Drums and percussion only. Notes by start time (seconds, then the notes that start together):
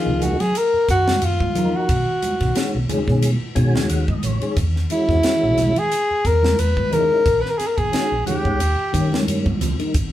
0.22 hi-hat pedal, ride, high conga, low conga
0.40 snare, ride
0.55 hi-hat pedal, ride
0.89 kick, hi-hat pedal, ride
1.07 snare, high conga
1.22 hi-hat pedal, ride
1.40 kick, high conga
1.55 hi-hat pedal, ride, low conga
1.89 kick, hi-hat pedal, ride
2.22 hi-hat pedal, ride, high conga
2.41 kick, snare, ride
2.55 snare, hi-hat pedal, ride
2.89 hi-hat pedal, ride, high conga, low conga
3.08 kick, snare
3.22 hi-hat pedal, ride, high conga
3.56 kick, hi-hat pedal, ride
3.75 snare, high conga, low conga
3.90 hi-hat pedal, ride
4.08 kick, high conga
4.23 hi-hat pedal, ride, low conga
4.42 ride
4.57 kick, hi-hat pedal, ride
4.76 snare
4.90 hi-hat pedal, ride
5.09 kick, snare
5.23 snare, hi-hat pedal, ride
5.58 snare, hi-hat pedal, ride, high conga, low conga
5.76 ride
5.92 hi-hat pedal, ride
6.25 kick, snare, hi-hat pedal, ride
6.43 snare, high conga
6.59 hi-hat pedal, ride
6.77 kick, high conga
6.92 hi-hat pedal, ride, low conga
7.26 kick, hi-hat pedal, ride
7.46 snare
7.60 snare, hi-hat pedal, ride
7.78 kick, ride
7.93 snare, hi-hat pedal, ride
8.26 hi-hat pedal, ride, high conga, low conga
8.45 kick
8.60 hi-hat pedal, ride
8.94 kick, hi-hat pedal, ride
9.12 snare, high conga
9.28 hi-hat pedal, ride
9.46 kick, high conga
9.61 hi-hat pedal, ride, low conga
9.80 ride
9.94 kick, hi-hat pedal, ride